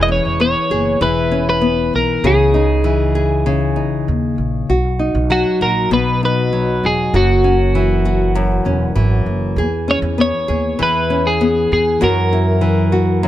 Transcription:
Already playing: upright bass E1, nylon-string guitar E3 G#4
0.03 clean electric guitar D#5
0.08 nylon-string guitar C#4, clean electric guitar C#5
0.25 upright bass E1
0.40 nylon-string guitar B3, clean electric guitar C#5
0.70 upright bass F#1, nylon-string guitar G#4
1.01 upright bass E1, nylon-string guitar E3, clean electric guitar B4
1.31 nylon-string guitar C#4
1.50 clean electric guitar B4
1.61 nylon-string guitar B3
1.94 upright bass B1, clean electric guitar A#4
2.24 upright bass C#2, nylon-string guitar C#3 G#4, clean electric guitar G#4
2.54 nylon-string guitar D#4
2.84 nylon-string guitar E3
3.15 nylon-string guitar G#4
3.46 nylon-string guitar C#3
3.76 upright bass B1, nylon-string guitar D#4
4.08 upright bass D#2
4.38 upright bass A#1
4.70 upright bass B1, nylon-string guitar F#4
4.99 nylon-string guitar D#4
5.15 upright bass B1
5.30 nylon-string guitar F#3, clean electric guitar F#4
5.61 upright bass A#1, nylon-string guitar F#4, clean electric guitar A#4
5.91 upright bass B1, nylon-string guitar B2, clean electric guitar B4
6.23 nylon-string guitar D#4, clean electric guitar B4
6.53 nylon-string guitar F#3
6.83 upright bass E1, clean electric guitar G#4
7.14 upright bass F#1, nylon-string guitar F#2 F#4, clean electric guitar F#4
7.44 nylon-string guitar C#4
7.75 nylon-string guitar E3
8.05 nylon-string guitar F#4
8.35 nylon-string guitar F#2
8.65 upright bass E1, nylon-string guitar C#4
8.95 upright bass G#1, nylon-string guitar E3
9.26 upright bass F#1
9.56 upright bass E2, nylon-string guitar G#4
9.88 nylon-string guitar C#4, clean electric guitar C#5
10.02 upright bass E2
10.18 nylon-string guitar B3, clean electric guitar C#5
10.48 upright bass D#2, nylon-string guitar G#4
10.79 upright bass E2, nylon-string guitar E3, clean electric guitar B4
11.10 nylon-string guitar C#4
11.27 clean electric guitar G#4
11.41 nylon-string guitar B3
11.72 upright bass E2, clean electric guitar G#4
12.01 nylon-string guitar F#2 F#4, upright bass F#2, clean electric guitar A#4
12.33 nylon-string guitar E4
12.61 nylon-string guitar E3
12.92 nylon-string guitar F#4
13.23 nylon-string guitar F#2

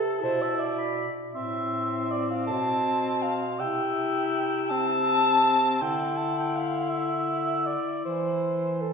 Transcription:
Already playing: bass clarinet C3, tenor saxophone A4, alto saxophone A4, clarinet A5
0.20 bass clarinet B2, tenor saxophone E4, alto saxophone C5, clarinet A5
0.42 alto saxophone E5
0.59 alto saxophone D5
0.78 clarinet B5
1.34 bass clarinet A2, tenor saxophone C4, alto saxophone E5, clarinet C6
2.11 alto saxophone D5
2.31 alto saxophone F5
2.47 bass clarinet B2, alto saxophone A5, clarinet C6
3.23 alto saxophone F5
3.59 bass clarinet C3, tenor saxophone E4, alto saxophone G5, clarinet E6
4.70 tenor saxophone C4, alto saxophone A5
5.81 bass clarinet D3, tenor saxophone E4, alto saxophone G5, clarinet C6
6.17 alto saxophone A5
6.39 alto saxophone G5
6.56 alto saxophone F5
6.90 alto saxophone E5
7.67 alto saxophone D5
8.04 bass clarinet E3, alto saxophone C5, clarinet C6
8.81 alto saxophone A4

